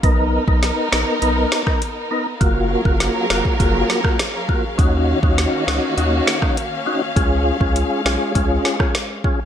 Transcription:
0.03 0.39 B1 loud
0.03 2.39 B3 medium
0.03 0.44 B3 loud
0.03 2.39 D#4 medium
0.03 0.45 D#4 medium
0.03 2.39 A#4 medium
0.03 0.45 A#4 loud
0.03 kick loud
0.03 closed hi-hat medium
0.48 0.71 B1 loud
0.48 0.89 B3 medium
0.48 0.89 D#4 medium
0.48 0.89 A#4 medium
0.48 kick loud
0.63 snare medium
0.63 closed hi-hat medium
0.92 1.04 A#1 loud
0.92 1.19 B3 medium
0.92 1.20 D#4 medium
0.92 1.20 A#4 medium
0.92 snare loud
1.22 1.46 B1 loud
1.22 1.63 B3 loud
1.22 1.63 D#4 medium
1.22 1.63 A#4 loud
1.22 closed hi-hat medium
1.52 snare loud
1.66 1.82 B3 medium
1.66 1.82 D#4 medium
1.66 1.82 A#4 medium
1.66 kick loud
1.66 cross-stick medium
1.82 closed hi-hat medium
2.11 2.27 B3 medium
2.11 2.27 D#4 medium
2.11 2.27 A#4 medium
2.40 2.76 F#1 loud
2.40 4.76 F#3 medium
2.40 2.82 A#3 loud
2.40 9.45 C#4 medium
2.40 2.82 F4 medium
2.40 2.82 F#4 loud
2.40 4.76 G#4 medium
2.40 4.76 A#4 medium
2.40 9.45 F5 medium
2.40 kick loud
2.40 closed hi-hat medium
2.85 3.09 F#1 loud
2.85 3.26 A#3 medium
2.85 3.27 F4 medium
2.85 3.27 F#4 medium
2.85 kick loud
3.00 snare medium
3.00 closed hi-hat medium
3.30 3.42 F1 loud
3.30 3.57 A#3 medium
3.30 3.57 F4 medium
3.30 3.58 F#4 medium
3.30 snare loud
3.45 kick loud
3.59 3.83 F#1 loud
3.59 4.01 A#3 loud
3.59 4.01 F4 medium
3.59 4.01 F#4 loud
3.59 kick loud
3.59 closed hi-hat medium
3.90 snare medium
4.04 4.20 A#3 medium
4.04 4.20 F4 medium
4.04 4.20 F#4 medium
4.04 kick loud
4.04 cross-stick medium
4.19 snare loud
4.19 closed hi-hat medium
4.48 4.64 A#3 medium
4.48 4.64 F4 medium
4.48 4.64 F#4 medium
4.48 kick medium
4.78 5.14 D#2 loud
4.78 7.14 D#3 medium
4.78 7.14 A#3 medium
4.78 5.19 C#4 loud
4.78 5.19 D#4 medium
4.78 5.20 F#4 loud
4.78 7.14 F#4 medium
4.78 kick loud
4.78 closed hi-hat medium
5.23 5.47 D#2 loud
5.23 5.64 C#4 medium
5.23 5.64 D#4 medium
5.23 5.64 F#4 medium
5.23 kick loud
5.38 snare medium
5.38 closed hi-hat medium
5.67 5.79 C#2 loud
5.67 5.95 C#4 medium
5.67 5.95 D#4 medium
5.67 5.95 F#4 medium
5.67 snare loud
5.97 6.21 D#2 loud
5.97 6.38 C#4 loud
5.97 6.38 D#4 medium
5.97 6.39 F#4 loud
5.97 closed hi-hat medium
6.27 snare loud
6.42 6.57 C#4 medium
6.42 6.58 D#4 medium
6.42 6.58 F#4 medium
6.42 kick loud
6.42 cross-stick medium
6.57 closed hi-hat medium
6.86 7.02 C#4 medium
6.86 7.02 D#4 medium
6.86 7.02 F#4 medium
7.16 7.52 C#2 loud
7.16 9.45 G#3 medium
7.16 7.57 C#4 medium
7.16 7.57 F4 medium
7.16 7.57 G#4 loud
7.16 kick loud
7.16 closed hi-hat medium
7.60 7.84 C#2 loud
7.60 8.02 C#4 medium
7.60 8.02 F4 medium
7.60 8.02 G#4 medium
7.60 kick loud
7.76 closed hi-hat medium
8.05 8.17 B1 loud
8.05 8.33 C#4 medium
8.05 8.33 F4 medium
8.05 8.33 G#4 medium
8.05 snare loud
8.35 8.59 C#2 loud
8.35 8.76 C#4 loud
8.35 8.76 F4 medium
8.35 8.76 G#4 loud
8.35 kick medium
8.35 closed hi-hat medium
8.65 snare medium
8.79 8.95 C#4 medium
8.79 8.95 F4 medium
8.79 8.95 G#4 medium
8.79 kick loud
8.79 cross-stick medium
8.95 snare loud
8.95 closed hi-hat medium
9.24 9.40 C#4 medium
9.24 9.40 F4 medium
9.24 9.40 G#4 medium
9.24 kick loud

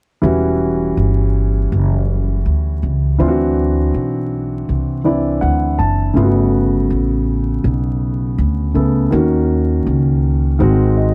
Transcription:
0.22 0.93 E1 medium
0.22 3.15 E3 medium
0.22 3.15 G3 medium
0.22 3.15 C#4 medium
0.22 3.16 F#4 medium
0.97 1.67 G1 medium
1.72 2.42 F#1 medium
2.46 2.81 D2 medium
2.83 3.18 C#2 medium
3.18 3.90 D2 medium
3.18 5.00 E3 medium
3.18 5.01 C4 medium
3.18 5.01 D4 soft
3.18 3.29 F4 medium
3.28 5.05 F#4 medium
3.94 4.64 B1 medium
4.69 5.39 C2 medium
5.04 6.15 E3 soft
5.04 6.16 C4 soft
5.04 6.16 D4 soft
5.04 6.16 E4 medium
5.04 5.39 D5 medium
5.41 5.77 D2 medium
5.41 5.76 F#5 medium
5.79 6.14 F#1 medium
5.79 6.13 A5 medium
6.14 6.87 G1 medium
6.14 8.70 C#3 medium
6.14 8.70 A3 medium
6.14 8.71 B3 medium
6.14 6.24 F4 soft
6.23 8.75 F#4 medium
6.90 7.60 A1 medium
7.64 8.34 B1 medium
8.38 8.73 D2 medium
8.74 9.10 C#2 medium
8.74 9.12 C#3 soft
8.74 9.12 A3 soft
8.74 9.12 B3 soft
8.74 9.12 A4 medium
9.11 9.83 D#2 medium
9.11 10.56 D#3 medium
9.11 10.57 A#3 medium
9.11 10.57 C#4 medium
9.11 10.58 F#4 medium
9.87 10.57 C#2 medium
10.59 11.14 G#1 medium
10.59 11.14 D#3 medium
10.59 11.14 G#3 medium
10.59 11.14 C4 medium
10.59 11.14 F#4 medium
10.97 11.14 D#5 medium

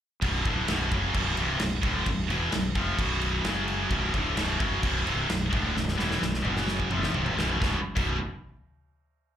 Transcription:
0.22 0.44 B0 medium
0.22 0.45 B1 medium
0.22 0.45 F#2 medium
0.22 0.45 B2 loud
0.22 kick loud
0.22 crash medium
0.45 0.67 D1 medium
0.45 0.68 D2 medium
0.45 0.68 A2 loud
0.45 0.69 D3 loud
0.45 kick loud
0.45 crash medium
0.68 0.90 B0 medium
0.68 0.91 B1 medium
0.68 0.91 F#2 medium
0.68 0.92 B2 loud
0.68 snare loud
0.68 crash medium
0.92 1.13 F#1 medium
0.92 1.14 F#2 loud
0.92 1.15 C#3 loud
0.92 1.15 F#3 loud
0.92 kick loud
0.92 crash medium
1.14 1.36 B0 medium
1.14 1.37 B1 medium
1.14 1.38 F#2 medium
1.14 1.38 B2 loud
1.14 kick loud
1.14 crash medium
1.37 1.59 C1 medium
1.37 1.60 C2 medium
1.37 1.61 G2 medium
1.37 1.61 C3 medium
1.37 crash medium
1.59 1.83 B0 medium
1.59 1.79 B1 medium
1.59 1.79 F#2 medium
1.59 snare loud
1.59 crash medium
1.83 2.05 D1 medium
1.83 2.06 D2 medium
1.83 2.07 A2 loud
1.83 2.07 D3 loud
1.83 kick loud
1.83 crash medium
2.06 2.28 B0 medium
2.06 2.26 B1 medium
2.06 2.26 F#2 medium
2.06 kick medium
2.06 crash medium
2.30 2.51 E1 loud
2.30 2.52 E2 medium
2.30 2.53 B2 medium
2.30 2.53 E3 loud
2.30 crash medium
2.52 2.74 B0 medium
2.52 2.71 B1 medium
2.52 2.72 F#2 medium
2.52 snare loud
2.52 crash medium
2.75 2.97 F1 loud
2.75 2.98 F2 medium
2.75 2.98 C3 medium
2.75 2.98 F3 loud
2.75 kick loud
2.75 crash medium
2.98 3.41 B0 medium
2.98 3.44 B1 medium
2.98 3.43 F#2 medium
2.98 3.44 B2 medium
2.98 kick medium
2.98 crash medium
3.21 crash medium
3.44 3.87 F#1 loud
3.44 3.90 F#2 loud
3.44 3.90 C#3 medium
3.44 3.91 F#3 medium
3.44 snare loud
3.44 crash medium
3.68 crash medium
3.90 4.12 B0 medium
3.90 4.13 B1 medium
3.90 4.13 F#2 medium
3.90 4.14 B2 medium
3.90 kick loud
3.90 crash medium
4.14 4.35 D1 loud
4.14 4.36 D2 loud
4.14 4.37 A2 loud
4.14 4.37 D3 loud
4.14 kick medium
4.14 crash medium
4.37 4.58 B0 medium
4.37 4.58 B1 loud
4.37 4.58 F#2 loud
4.37 4.60 B2 loud
4.37 snare loud
4.37 crash medium
4.59 4.82 F#1 loud
4.59 4.81 F#2 medium
4.59 4.82 C#3 medium
4.59 4.82 F#3 loud
4.59 kick loud
4.59 crash medium
4.82 5.05 B0 medium
4.82 5.05 B1 medium
4.82 5.05 F#2 medium
4.82 5.05 B2 medium
4.82 kick loud
4.82 crash medium
5.05 5.28 C1 loud
5.05 5.28 C2 medium
5.05 5.28 G2 medium
5.05 5.29 C3 loud
5.05 crash medium
5.29 5.51 B0 medium
5.29 5.48 B1 medium
5.29 5.48 F#2 medium
5.29 snare loud
5.29 crash medium
5.53 5.74 D1 medium
5.53 5.75 D2 medium
5.53 5.75 A2 loud
5.53 5.76 D3 medium
5.53 kick loud
5.53 crash medium
5.76 5.97 B0 medium
5.76 5.94 B1 medium
5.76 5.94 F#2 medium
5.76 snare medium
5.88 snare medium
5.97 6.20 E1 medium
5.97 6.20 E2 loud
5.97 6.21 B2 loud
5.97 6.22 E3 medium
5.97 snare medium
6.11 snare medium
6.21 6.44 B0 medium
6.21 6.40 B1 medium
6.21 6.40 F#2 medium
6.21 snare medium
6.34 snare medium
6.44 6.88 F#1 medium
6.44 6.90 F#2 medium
6.44 6.91 C#3 loud
6.44 6.91 F#3 loud
6.44 mid tom medium
6.57 snare medium
6.68 snare medium
6.80 kick medium
6.91 7.13 F1 medium
6.91 7.13 F2 medium
6.91 7.13 C3 medium
6.91 7.14 F3 medium
6.91 mid tom medium
7.03 snare medium
7.14 7.36 C1 medium
7.14 7.37 C2 medium
7.14 7.37 G2 medium
7.14 7.37 C3 medium
7.14 floor tom medium
7.26 floor tom medium
7.37 7.59 B0 loud
7.37 7.59 B1 medium
7.37 7.61 F#2 medium
7.37 7.61 B2 medium
7.37 snare loud
7.49 floor tom medium
7.61 7.75 B0 medium
7.61 7.75 B1 medium
7.61 7.75 F#2 loud
7.61 7.76 B2 medium
7.61 kick loud
7.61 snare medium
7.96 8.18 B0 medium
7.96 8.15 B1 medium
7.96 8.15 F#2 medium
7.96 8.15 B2 medium
7.96 kick loud
7.96 crash medium

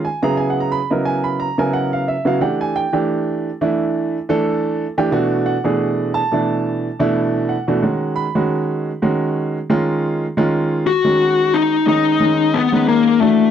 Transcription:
0.05 0.23 G#5 medium
0.23 0.78 C#3 medium
0.23 0.78 F#3 medium
0.23 0.78 B3 medium
0.23 0.79 E4 medium
0.23 0.79 G#4 medium
0.23 0.38 A#5 loud
0.37 0.49 G#5 medium
0.50 0.61 F#5 medium
0.60 0.72 A#5 medium
0.72 0.90 B5 medium
0.90 1.46 C#3 medium
0.90 1.46 F#3 medium
0.90 1.46 B3 medium
0.90 1.46 E4 medium
0.90 1.47 A#4 medium
0.90 1.05 D#5 medium
1.05 1.24 G#5 medium
1.24 1.39 B5 medium
1.40 1.58 A#5 medium
1.58 2.14 C#3 medium
1.58 2.14 F#3 medium
1.58 2.14 B3 medium
1.58 2.14 E4 medium
1.58 2.14 A#4 medium
1.58 1.74 G#5 medium
1.73 1.92 F#5 medium
1.93 2.07 F5 medium
2.08 2.26 E5 medium
2.25 2.41 C#3 medium
2.25 2.41 F#3 medium
2.25 2.41 B3 medium
2.25 2.41 E4 medium
2.25 2.41 F#4 medium
2.25 2.42 F5 medium
2.40 2.84 E3 medium
2.40 2.85 A3 medium
2.40 2.84 D4 medium
2.40 2.85 G4 medium
2.40 2.59 F#5 medium
2.61 2.75 G#5 medium
2.76 2.96 G5 medium
2.93 3.49 E3 medium
2.93 3.49 A3 medium
2.93 3.49 D4 medium
2.93 3.49 G4 medium
3.61 4.17 E3 medium
3.61 4.17 A3 medium
3.61 4.17 D4 medium
3.61 4.17 E4 medium
4.29 4.84 E3 medium
4.29 4.84 A3 medium
4.29 4.84 D4 medium
4.29 4.85 A4 loud
4.98 5.11 E3 medium
4.98 5.10 A3 medium
4.98 5.11 D4 medium
4.98 5.12 G4 loud
5.12 5.55 B2 medium
5.12 5.55 E3 medium
5.12 5.55 A3 medium
5.12 5.55 D4 medium
5.12 5.55 F#4 loud
5.46 6.09 F#5 medium
5.64 6.19 B2 medium
5.64 6.20 E3 medium
5.64 6.20 A3 medium
5.64 6.20 D4 medium
5.64 6.20 G#4 medium
6.14 7.11 A5 loud
6.32 6.87 B2 medium
6.32 6.87 E3 medium
6.32 6.87 A3 medium
6.32 6.87 D4 medium
6.32 6.88 E4 medium
6.99 7.54 B2 medium
6.99 7.55 E3 medium
6.99 7.55 A3 medium
6.99 7.55 D4 medium
6.99 7.55 E4 loud
7.49 8.12 F#5 medium
7.68 7.82 B2 medium
7.68 7.82 E3 medium
7.68 7.82 A3 medium
7.68 7.83 D4 medium
7.68 7.82 F#4 medium
7.82 8.25 D#3 medium
7.82 8.26 G#3 medium
7.82 8.25 C#4 medium
7.82 8.26 F#4 medium
8.16 9.13 B5 medium
8.35 8.90 D#3 medium
8.35 8.90 G#3 medium
8.35 8.90 C#4 medium
8.35 8.90 F#4 medium
9.02 9.57 D#3 medium
9.02 9.57 G#3 medium
9.02 9.57 C#4 medium
9.02 9.57 F#4 medium
9.70 10.24 D#3 medium
9.70 10.24 G#3 medium
9.70 10.25 C#4 medium
9.70 10.25 F4 loud
10.37 10.86 D#3 loud
10.37 10.86 G#3 medium
10.37 10.86 C#4 medium
10.37 10.86 F4 loud
10.87 11.55 F#4 medium
11.04 11.74 D#3 medium
11.04 11.74 G#3 medium
11.04 11.74 C#4 medium
11.04 11.74 F#4 medium
11.54 11.85 D#4 medium
11.86 12.15 D#3 medium
11.86 12.15 G#3 medium
11.86 12.15 C#4 medium
11.86 12.15 D#4 medium
11.86 12.57 D#4 medium
12.19 12.63 D#3 medium
12.19 12.63 G#3 medium
12.19 12.63 C#4 medium
12.19 12.63 D#4 medium
12.54 12.88 B3 medium
12.72 13.21 D#3 medium
12.72 13.21 G#3 medium
12.72 13.21 C#4 medium
12.72 13.22 D#4 medium
12.88 13.21 A#3 medium
13.21 13.51 E3 medium
13.21 13.51 A3 medium
13.21 13.51 D4 medium
13.21 13.51 F#4 medium

